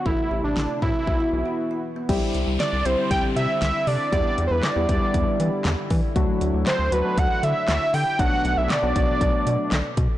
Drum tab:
CC |--------|x-------|--------|--------|
HH |--------|xxxxxxxo|xxxxxxxo|xxxxxxxo|
CP |--------|--------|--x---x-|--x---x-|
SD |--o-----|--o---o-|--o---o-|--o---o-|
BD |o--oo---|o---o---|o--oo--o|o---o---|

CC |--------|
HH |xxxxxxxx|
CP |--x---x-|
SD |--o---o-|
BD |o--oo--o|